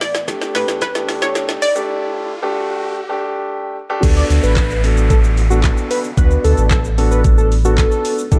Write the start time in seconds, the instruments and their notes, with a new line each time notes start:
Already playing: sub bass A1, riser
0.01 synth pluck D5, snare, open hi-hat, shaker
0.15 snare, shaker
0.28 grand piano A3 D4 G4, kick, snare, closed hi-hat, shaker
0.42 snare, shaker
0.55 sub bass A2, synth pluck B4, snare, open hi-hat, shaker
0.68 sub bass E2, snare, shaker
0.81 synth pluck B4, kick, snare, closed hi-hat, shaker
0.95 grand piano A3 D4 G4, snare, shaker
1.09 snare, open hi-hat, shaker
1.22 synth pluck C#5, snare, shaker
1.35 snare, closed hi-hat, shaker
1.49 snare, shaker
1.62 synth pluck D5, open hi-hat, shaker
1.75 grand piano A3 D4 G4, shaker
2.42 grand piano A3 D4 G4
3.09 grand piano A3 D4 G4
3.90 grand piano A3 D4 G4
4.03 sub bass D2, grand piano B3 D4 F#4 A4, kick, closed hi-hat, crash, downlifter, shaker
4.17 analog synth lead D5, shaker
4.30 sub bass D2, open hi-hat, shaker
4.43 sub bass A1, analog synth lead B4, shaker
4.57 kick, snare, clap, closed hi-hat, shaker
4.70 shaker
4.83 grand piano B3 D4 F#4 A4, open hi-hat, shaker
4.97 shaker
5.10 analog synth lead A4, kick, closed hi-hat, shaker
5.24 shaker
5.37 open hi-hat, shaker
5.50 grand piano B3 D4 F#4 A4, analog synth lead F#4, shaker
5.64 kick, snare, clap, closed hi-hat, shaker
5.77 shaker
5.91 analog synth lead B4, open hi-hat, shaker
6.04 shaker
6.17 sub bass D2, grand piano B3 D4 F#4 B4, analog synth lead B4, kick, closed hi-hat, shaker
6.31 shaker
6.44 sub bass D2, analog synth lead A4, open hi-hat, shaker
6.58 sub bass A1, shaker
6.71 analog synth lead A4, kick, snare, clap, closed hi-hat, shaker
6.85 shaker
6.98 grand piano B3 D4 F#4 A4, open hi-hat, shaker
7.11 analog synth lead B4, shaker
7.24 kick, closed hi-hat, shaker
7.38 analog synth lead A4, shaker
7.52 open hi-hat, shaker
7.65 grand piano B3 D4 F#4 A4, analog synth lead F#4, shaker
7.78 analog synth lead A4, kick, snare, clap, closed hi-hat, shaker
7.91 shaker
8.05 open hi-hat, shaker
8.18 shaker
8.32 sub bass A1, grand piano D4 E4 G4 A4, kick, closed hi-hat, shaker